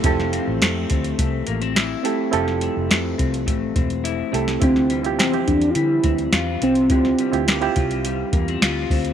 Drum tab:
HH |x-x-x-xxx-xxx-x-|x-x-x-xxx-xxx-x-|x-xxxxxxx-xxx-xx|x-xxxxxxx-xxx-ox|
SD |-o--o-------o---|-o--o----------o|-o--o-------o---|-o--o-------o---|
BD |o-----o-o-------|------o-o-o-----|o-----o---o-----|o-----o---o---o-|